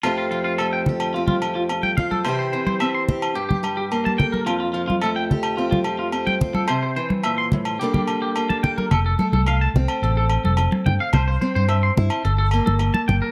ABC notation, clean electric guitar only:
X:1
M:4/4
L:1/16
Q:1/4=108
K:F
V:1 name="Clean electric guitar"
F F F F A g z2 F F z F z g f A | c c c c e c' z2 G G z G z a g B | F F F F A g z2 F F z F z g z A | c c c z e c' z2 G G z G z a g B |
A A A A f a z2 A A z A z2 g f | c c c c e c' z2 A A z A z a g B |]